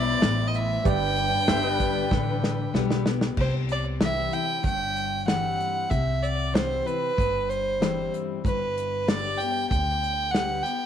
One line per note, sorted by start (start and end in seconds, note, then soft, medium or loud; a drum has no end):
0.00 0.13 B1 medium
0.00 0.18 B2 medium
0.00 0.82 E3 medium
0.00 3.34 G3 medium
0.00 0.82 E4 medium
0.00 0.81 G4 medium
0.00 0.81 C5 medium
0.00 0.83 C5 medium
0.00 0.49 D5 loud
0.00 0.81 E5 medium
0.00 0.83 E5 medium
0.22 0.76 A1 loud
0.22 0.82 A2 medium
0.22 snare loud
0.22 closed hi-hat medium
0.47 0.57 D#5 medium
0.54 0.89 E5 medium
0.54 closed hi-hat medium
0.84 1.30 G1 medium
0.84 2.05 G2 medium
0.84 3.36 D4 medium
0.84 3.33 G4 medium
0.84 3.34 B4 medium
0.84 3.35 B4 medium
0.84 3.34 D5 medium
0.84 2.76 G5 loud
0.84 kick loud
0.84 closed hi-hat medium
1.16 closed hi-hat medium
1.48 2.02 G1 medium
1.48 2.08 D3 medium
1.48 2.09 G3 medium
1.48 2.09 B3 medium
1.48 2.10 G4 medium
1.48 1.68 C5 medium
1.48 1.74 E5 medium
1.48 snare loud
1.48 closed hi-hat medium
1.68 3.36 B4 medium
1.74 3.36 D5 medium
1.80 kick medium
1.80 closed hi-hat medium
2.11 2.65 A1 medium
2.11 2.73 D3 medium
2.11 kick loud
2.11 snare medium
2.44 snare medium
2.74 3.28 B1 medium
2.74 3.04 D3 medium
2.74 3.05 G3 medium
2.74 3.05 B3 loud
2.74 3.04 G4 medium
2.74 snare medium
2.91 snare medium
3.05 3.37 B3 soft
3.05 3.36 G4 medium
3.05 snare medium
3.21 snare medium
3.37 4.26 C2 medium
3.37 4.58 C3 medium
3.37 3.54 C5 medium
3.37 kick medium
3.37 crash medium
3.69 3.85 D5 medium
3.69 closed hi-hat medium
4.00 4.31 E3 soft
4.00 4.31 G3 medium
4.00 4.32 C4 medium
4.00 4.30 E4 medium
4.00 4.35 E5 medium
4.00 snare loud
4.00 closed hi-hat medium
4.31 4.63 C4 soft
4.31 4.62 E4 soft
4.31 4.64 G5 medium
4.31 closed hi-hat soft
4.63 5.53 G1 medium
4.63 5.84 G2 medium
4.63 5.24 G5 medium
4.63 kick medium
4.63 closed hi-hat medium
4.97 closed hi-hat soft
5.26 5.87 E3 medium
5.26 5.87 G3 medium
5.26 5.87 C4 medium
5.26 5.88 E4 medium
5.26 5.91 F#5 medium
5.26 snare medium
5.26 closed hi-hat medium
5.60 closed hi-hat soft
5.90 6.80 C2 medium
5.90 7.10 C3 medium
5.90 6.24 E5 medium
5.90 kick loud
5.90 closed hi-hat medium
6.23 6.55 D5 medium
6.23 closed hi-hat medium
6.52 6.84 E3 soft
6.52 6.84 G3 soft
6.52 6.84 C4 soft
6.52 6.84 E4 medium
6.52 6.88 C5 medium
6.52 snare loud
6.52 closed hi-hat medium
6.86 7.17 C4 soft
6.86 7.16 E4 medium
6.86 7.51 B4 medium
6.86 closed hi-hat medium
7.17 8.07 G1 medium
7.17 8.37 G2 medium
7.17 kick loud
7.17 closed hi-hat medium
7.49 8.12 C5 medium
7.49 closed hi-hat medium
7.80 8.41 E3 medium
7.80 8.41 G3 medium
7.80 8.41 C4 medium
7.80 8.42 E4 medium
7.80 snare medium
7.80 closed hi-hat medium
8.14 closed hi-hat medium
8.44 9.33 G1 medium
8.44 9.64 G2 medium
8.44 9.09 B4 medium
8.44 kick loud
8.44 closed hi-hat medium
8.78 closed hi-hat medium
9.07 9.38 D3 medium
9.07 9.38 G3 soft
9.07 9.38 B3 soft
9.07 9.39 G4 medium
9.07 9.39 D5 medium
9.07 snare loud
9.07 closed hi-hat medium
9.38 9.70 G4 soft
9.38 9.69 G5 loud
9.38 closed hi-hat medium
9.43 9.71 B3 soft
9.70 10.60 D2 medium
9.70 10.31 D3 medium
9.70 10.32 G5 medium
9.70 kick loud
9.70 closed hi-hat medium
10.04 closed hi-hat soft
10.31 10.63 D3 medium
10.31 10.64 G3 medium
10.31 10.64 B3 medium
10.31 10.62 G4 medium
10.31 10.64 F#5 medium
10.31 snare medium
10.31 closed hi-hat medium
10.63 10.86 B3 soft
10.63 10.86 G4 medium
10.63 10.86 G5 medium
10.63 closed hi-hat medium